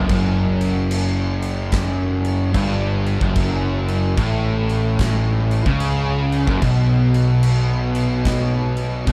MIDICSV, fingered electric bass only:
0, 0, Header, 1, 2, 480
1, 0, Start_track
1, 0, Tempo, 816327
1, 58, Time_signature, 4, 2, 24, 8
1, 5363, End_track
2, 0, Start_track
2, 0, Title_t, "Fingered electric bass"
2, 0, Program_c, 0, 33
2, 57, Note_on_c, 0, 30, 98
2, 1475, Note_off_c, 0, 30, 0
2, 1495, Note_on_c, 0, 31, 107
2, 1867, Note_off_c, 0, 31, 0
2, 1890, Note_on_c, 0, 30, 89
2, 2435, Note_off_c, 0, 30, 0
2, 2457, Note_on_c, 0, 33, 101
2, 3308, Note_off_c, 0, 33, 0
2, 3328, Note_on_c, 0, 37, 96
2, 3787, Note_off_c, 0, 37, 0
2, 3808, Note_on_c, 0, 30, 94
2, 3891, Note_off_c, 0, 30, 0
2, 3894, Note_on_c, 0, 35, 91
2, 5311, Note_off_c, 0, 35, 0
2, 5336, Note_on_c, 0, 35, 106
2, 5363, Note_off_c, 0, 35, 0
2, 5363, End_track
0, 0, End_of_file